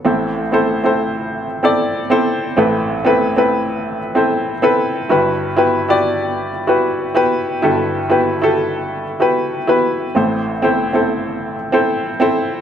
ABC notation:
X:1
M:4/4
L:1/16
Q:1/4=95
K:Ador
V:1 name="Upright piano"
[CEAc]2 z [CEAc]2 [CEAc]4 z [CEAd]2 z [CEAc]2 z | [CEAB]2 z [CEAB]2 [CEAB]4 z [CEAc]2 z [CEAB]2 z | [EFGB]2 z [EFGB]2 [EFGd]4 z [EFGB]2 z [EFGB]2 z | [EFGA]2 z [EFGB]2 [EFGA]4 z [EFGB]2 z [EFGB]2 z |
[CEAc]2 z [CEAc]2 [CEAc]4 z [CEAc]2 z [CEAc]2 z |]
V:2 name="Upright piano" clef=bass
[A,,,A,,]16 | [A,,,A,,]16 | [G,,,G,,]16 | [G,,,G,,]16 |
[A,,,A,,]16 |]